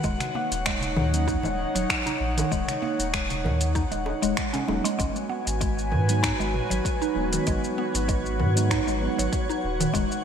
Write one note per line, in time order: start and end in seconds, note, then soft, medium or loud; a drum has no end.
0.00 0.16 D#1 medium
0.00 4.95 D#4 medium
0.00 4.95 C#5 medium
0.00 4.95 F#5 medium
0.00 shaker medium
0.04 0.20 G#3 loud
0.04 kick medium
0.20 finger snap soft
0.20 closed hi-hat soft
0.20 high conga medium
0.20 shaker soft
0.35 0.51 A#3 medium
0.35 high conga soft
0.51 0.98 D#1 loud
0.51 closed hi-hat medium
0.51 shaker medium
0.66 0.96 G#3 medium
0.66 finger snap medium
0.66 kick medium
0.66 shaker soft
0.81 closed hi-hat soft
0.81 high conga medium
0.81 shaker soft
0.96 1.36 D#2 medium
0.96 1.26 D#3 medium
0.96 mid tom medium
0.96 high bongo soft
0.96 low conga medium
1.12 1.37 F#3 medium
1.12 1.37 A#3 medium
1.12 1.38 C#4 medium
1.12 1.38 D#4 medium
1.12 closed hi-hat medium
1.12 shaker medium
1.28 1.44 D#4 medium
1.28 kick loud
1.28 shaker medium
1.43 1.65 D#1 medium
1.43 1.58 G#3 medium
1.43 low conga medium
1.43 shaker soft
1.75 1.85 D#1 loud
1.75 1.89 F#3 medium
1.75 closed hi-hat medium
1.75 shaker medium
1.90 finger snap loud
1.90 kick loud
1.90 shaker medium
2.06 2.36 D#4 medium
2.06 closed hi-hat soft
2.06 high conga medium
2.06 shaker soft
2.20 2.43 A#1 medium
2.37 2.50 D#3 medium
2.37 closed hi-hat medium
2.37 high bongo medium
2.37 shaker medium
2.52 2.64 D#1 medium
2.52 2.68 G#3 loud
2.52 kick medium
2.52 shaker medium
2.68 finger snap soft
2.68 closed hi-hat soft
2.68 high conga medium
2.68 shaker soft
2.82 2.98 A#3 medium
2.82 high conga soft
2.99 3.46 D#1 loud
2.99 closed hi-hat medium
2.99 shaker medium
3.13 3.43 G#3 medium
3.13 finger snap loud
3.13 kick loud
3.13 shaker soft
3.30 closed hi-hat soft
3.30 high conga medium
3.30 shaker soft
3.44 3.84 D#2 medium
3.44 3.74 D#3 medium
3.44 mid tom medium
3.44 high bongo soft
3.44 low conga medium
3.61 closed hi-hat medium
3.61 shaker medium
3.75 3.91 D#4 medium
3.75 kick loud
3.75 low conga medium
3.75 shaker medium
3.91 4.13 D#1 medium
3.91 4.05 G#3 medium
3.91 closed hi-hat soft
3.91 shaker soft
4.06 high bongo medium
4.22 4.33 D#1 loud
4.22 4.36 G#3 loud
4.22 closed hi-hat medium
4.22 high bongo soft
4.22 shaker medium
4.37 finger snap loud
4.37 kick loud
4.37 shaker medium
4.53 4.67 C#4 medium
4.53 closed hi-hat soft
4.53 high bongo medium
4.53 high conga medium
4.53 shaker soft
4.67 4.80 D#1 medium
4.67 4.84 F#3 medium
4.67 4.78 G#3 medium
4.67 4.85 A#3 medium
4.67 4.85 C#4 medium
4.67 4.85 D#4 medium
4.67 high bongo medium
4.84 4.97 G#3 loud
4.84 closed hi-hat medium
4.84 shaker medium
4.98 5.11 G#1 medium
4.98 5.15 G#3 loud
4.98 9.90 F#4 medium
4.98 9.90 B4 medium
4.98 10.24 C#5 medium
4.98 7.44 G#5 medium
4.98 kick loud
4.98 closed hi-hat medium
4.98 shaker medium
5.16 shaker soft
5.29 5.46 B3 medium
5.47 5.94 G#1 loud
5.47 closed hi-hat soft
5.47 shaker medium
5.61 5.90 G#3 medium
5.61 kick loud
5.61 closed hi-hat medium
5.61 shaker medium
5.79 shaker soft
5.92 6.32 G#2 medium
5.92 6.21 D#3 medium
5.92 mid tom medium
6.08 6.32 F#3 medium
6.08 6.33 G#3 medium
6.08 6.33 B3 medium
6.08 6.33 D#4 medium
6.08 closed hi-hat soft
6.08 shaker medium
6.23 6.39 D#4 loud
6.23 finger snap medium
6.23 kick loud
6.23 closed hi-hat medium
6.23 shaker medium
6.40 6.61 G#1 medium
6.40 6.53 G#3 medium
6.40 shaker soft
6.54 mid tom medium
6.70 6.81 G#1 loud
6.70 6.84 F#3 medium
6.70 closed hi-hat soft
6.70 shaker medium
6.85 kick loud
6.85 closed hi-hat medium
6.85 shaker medium
7.02 7.31 D#4 medium
7.02 shaker soft
7.15 7.38 D#1 medium
7.15 8.52 F#3 medium
7.15 8.52 G#3 medium
7.15 8.53 B3 medium
7.15 8.53 D#4 medium
7.33 7.46 D#3 medium
7.33 closed hi-hat soft
7.33 shaker medium
7.46 7.59 G#1 medium
7.46 7.63 G#3 loud
7.46 10.24 F#5 medium
7.46 kick loud
7.46 closed hi-hat medium
7.46 shaker medium
7.64 shaker soft
7.78 7.94 B3 medium
7.95 8.41 G#1 loud
7.95 closed hi-hat soft
7.95 shaker medium
8.08 8.38 G#3 medium
8.08 kick loud
8.08 closed hi-hat medium
8.08 shaker medium
8.26 shaker soft
8.39 8.79 G#2 medium
8.39 8.69 D#3 medium
8.39 mid tom medium
8.55 8.70 F#3 medium
8.55 8.70 G#3 medium
8.55 8.70 B3 medium
8.55 8.71 D#4 medium
8.55 closed hi-hat soft
8.55 shaker medium
8.71 8.86 D#4 loud
8.71 finger snap medium
8.71 kick loud
8.71 closed hi-hat medium
8.71 shaker medium
8.87 9.08 G#1 medium
8.87 9.01 G#3 medium
8.87 shaker soft
9.00 9.17 F#3 medium
9.00 9.18 G#3 medium
9.00 9.18 B3 medium
9.00 9.19 D#4 loud
9.18 9.28 G#1 loud
9.18 9.32 F#3 medium
9.18 closed hi-hat soft
9.18 shaker medium
9.33 kick loud
9.33 closed hi-hat medium
9.33 shaker medium
9.49 9.78 D#4 medium
9.49 shaker soft
9.64 9.86 D#1 medium
9.80 9.93 D#3 medium
9.80 closed hi-hat soft
9.80 mid tom medium
9.80 shaker medium
9.93 10.06 D#1 loud
9.93 10.10 G#3 loud
9.93 10.24 D#4 medium
9.93 10.24 C#5 medium
9.93 kick loud
9.93 closed hi-hat medium
9.93 shaker medium
10.12 shaker soft